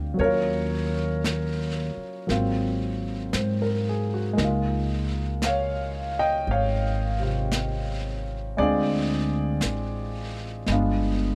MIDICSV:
0, 0, Header, 1, 5, 480
1, 0, Start_track
1, 0, Tempo, 1048951
1, 89, Time_signature, 4, 2, 24, 8
1, 5194, End_track
2, 0, Start_track
2, 0, Title_t, "Grand piano"
2, 0, Program_c, 0, 0
2, 0, Control_c, 0, 64, 127
2, 0, Note_on_c, 0, 50, 42
2, 0, Note_on_c, 0, 55, 48
2, 0, Note_on_c, 0, 60, 44
2, 0, Note_on_c, 0, 65, 50
2, 0, Note_on_c, 0, 74, 50
2, 0, Note_on_c, 0, 77, 64
2, 64, Note_on_c, 0, 54, 41
2, 80, Note_on_c, 0, 58, 35
2, 87, Note_off_c, 0, 55, 0
2, 89, Note_on_c, 0, 73, 80
2, 90, Note_off_c, 0, 60, 0
2, 93, Note_off_c, 0, 50, 0
2, 94, Control_c, 0, 64, 0
2, 95, Note_off_c, 0, 74, 0
2, 96, Note_on_c, 0, 70, 66
2, 97, Note_off_c, 0, 77, 0
2, 97, Note_on_c, 0, 61, 36
2, 98, Note_off_c, 0, 65, 0
2, 116, Note_on_c, 0, 65, 45
2, 163, Control_c, 0, 64, 127
2, 1031, Note_off_c, 0, 54, 0
2, 1032, Note_off_c, 0, 73, 0
2, 1035, Note_off_c, 0, 70, 0
2, 1036, Note_off_c, 0, 58, 0
2, 1038, Note_on_c, 0, 54, 42
2, 1043, Note_on_c, 0, 58, 38
2, 1052, Note_off_c, 0, 65, 0
2, 1054, Note_off_c, 0, 61, 0
2, 1055, Note_on_c, 0, 60, 42
2, 1056, Control_c, 0, 64, 0
2, 1058, Note_on_c, 0, 65, 50
2, 1138, Control_c, 0, 64, 127
2, 1531, Note_on_c, 0, 72, 40
2, 1656, Note_on_c, 0, 70, 41
2, 1760, Note_off_c, 0, 72, 0
2, 1781, Note_on_c, 0, 68, 41
2, 1862, Note_off_c, 0, 70, 0
2, 1894, Note_on_c, 0, 66, 40
2, 1922, Note_off_c, 0, 68, 0
2, 1983, Note_on_c, 0, 56, 47
2, 1994, Note_off_c, 0, 58, 0
2, 2000, Note_on_c, 0, 58, 44
2, 2004, Note_off_c, 0, 54, 0
2, 2012, Note_off_c, 0, 60, 0
2, 2014, Note_off_c, 0, 65, 0
2, 2015, Control_c, 0, 64, 0
2, 2015, Note_on_c, 0, 63, 40
2, 2033, Note_on_c, 0, 65, 52
2, 2059, Note_off_c, 0, 66, 0
2, 2104, Control_c, 0, 64, 127
2, 2489, Note_on_c, 0, 77, 71
2, 2501, Note_on_c, 0, 73, 62
2, 2805, Note_off_c, 0, 73, 0
2, 2827, Note_off_c, 0, 77, 0
2, 2834, Note_on_c, 0, 75, 67
2, 2834, Note_on_c, 0, 79, 81
2, 2966, Note_off_c, 0, 75, 0
2, 2979, Note_on_c, 0, 77, 66
2, 2980, Note_off_c, 0, 79, 0
2, 2981, Note_on_c, 0, 73, 56
2, 3293, Note_on_c, 0, 48, 34
2, 3302, Note_off_c, 0, 65, 0
2, 3308, Note_on_c, 0, 65, 41
2, 3763, Note_off_c, 0, 77, 0
2, 3764, Note_off_c, 0, 73, 0
2, 3912, Note_off_c, 0, 56, 0
2, 3921, Note_off_c, 0, 58, 0
2, 3922, Note_on_c, 0, 56, 51
2, 3924, Note_off_c, 0, 48, 0
2, 3928, Note_off_c, 0, 63, 0
2, 3928, Note_on_c, 0, 74, 82
2, 3931, Control_c, 0, 64, 0
2, 3931, Note_on_c, 0, 60, 46
2, 3932, Note_off_c, 0, 65, 0
2, 3935, Note_on_c, 0, 62, 44
2, 3935, Note_on_c, 0, 68, 59
2, 3944, Note_on_c, 0, 65, 52
2, 4019, Control_c, 0, 64, 127
2, 4869, Note_off_c, 0, 74, 0
2, 4873, Note_off_c, 0, 68, 0
2, 4880, Note_off_c, 0, 56, 0
2, 4887, Note_on_c, 0, 56, 45
2, 4889, Note_off_c, 0, 60, 0
2, 4891, Note_off_c, 0, 62, 0
2, 4892, Control_c, 0, 64, 0
2, 4893, Note_on_c, 0, 59, 41
2, 4895, Note_off_c, 0, 65, 0
2, 4903, Note_on_c, 0, 62, 41
2, 4906, Note_on_c, 0, 65, 51
2, 4982, Control_c, 0, 64, 127
2, 5194, Note_off_c, 0, 56, 0
2, 5194, Note_off_c, 0, 59, 0
2, 5194, Note_off_c, 0, 62, 0
2, 5194, Note_off_c, 0, 65, 0
2, 5194, End_track
3, 0, Start_track
3, 0, Title_t, "Upright bass"
3, 0, Program_c, 1, 32
3, 0, Note_on_c, 1, 38, 52
3, 76, Note_off_c, 1, 38, 0
3, 86, Note_on_c, 1, 39, 67
3, 879, Note_off_c, 1, 39, 0
3, 1049, Note_on_c, 1, 32, 64
3, 1511, Note_off_c, 1, 32, 0
3, 1527, Note_on_c, 1, 44, 61
3, 1990, Note_off_c, 1, 44, 0
3, 2004, Note_on_c, 1, 37, 71
3, 2946, Note_off_c, 1, 37, 0
3, 2961, Note_on_c, 1, 32, 70
3, 3904, Note_off_c, 1, 32, 0
3, 3927, Note_on_c, 1, 38, 67
3, 4388, Note_off_c, 1, 38, 0
3, 4407, Note_on_c, 1, 33, 52
3, 4869, Note_off_c, 1, 33, 0
3, 4884, Note_on_c, 1, 31, 64
3, 5194, Note_off_c, 1, 31, 0
3, 5194, End_track
4, 0, Start_track
4, 0, Title_t, "Muted upright bass strokes"
4, 901, Note_on_c, 9, 29, 31
4, 946, Note_off_c, 9, 29, 0
4, 5194, End_track
5, 0, Start_track
5, 0, Title_t, "Drums"
5, 84, Note_on_c, 9, 25, 35
5, 569, Note_off_c, 9, 25, 0
5, 569, Note_on_c, 9, 25, 32
5, 569, Note_on_c, 9, 38, 34
5, 569, Note_on_c, 9, 44, 38
5, 615, Note_off_c, 9, 38, 0
5, 615, Note_off_c, 9, 44, 0
5, 1048, Note_off_c, 9, 25, 0
5, 1048, Note_on_c, 9, 25, 32
5, 1048, Note_on_c, 9, 38, 20
5, 1094, Note_off_c, 9, 38, 0
5, 1524, Note_off_c, 9, 25, 0
5, 1524, Note_on_c, 9, 25, 33
5, 1524, Note_on_c, 9, 38, 38
5, 1524, Note_on_c, 9, 44, 51
5, 1570, Note_off_c, 9, 38, 0
5, 1570, Note_off_c, 9, 44, 0
5, 2003, Note_off_c, 9, 25, 0
5, 2003, Note_on_c, 9, 25, 28
5, 2003, Note_on_c, 9, 38, 23
5, 2049, Note_off_c, 9, 38, 0
5, 2480, Note_off_c, 9, 25, 0
5, 2480, Note_on_c, 9, 25, 29
5, 2480, Note_on_c, 9, 38, 33
5, 2480, Note_on_c, 9, 44, 47
5, 2525, Note_off_c, 9, 38, 0
5, 2525, Note_off_c, 9, 44, 0
5, 2956, Note_off_c, 9, 25, 0
5, 2956, Note_on_c, 9, 25, 26
5, 3439, Note_off_c, 9, 25, 0
5, 3439, Note_on_c, 9, 25, 28
5, 3439, Note_on_c, 9, 38, 36
5, 3439, Note_on_c, 9, 44, 48
5, 3484, Note_off_c, 9, 38, 0
5, 3484, Note_off_c, 9, 44, 0
5, 3915, Note_off_c, 9, 25, 0
5, 3915, Note_on_c, 9, 25, 33
5, 4397, Note_off_c, 9, 25, 0
5, 4397, Note_on_c, 9, 25, 30
5, 4397, Note_on_c, 9, 38, 34
5, 4397, Note_on_c, 9, 44, 47
5, 4442, Note_off_c, 9, 38, 0
5, 4442, Note_off_c, 9, 44, 0
5, 4880, Note_off_c, 9, 25, 0
5, 4880, Note_on_c, 9, 25, 26
5, 4880, Note_on_c, 9, 38, 23
5, 4926, Note_off_c, 9, 38, 0
5, 5194, Note_off_c, 9, 25, 0
5, 5194, End_track
0, 0, End_of_file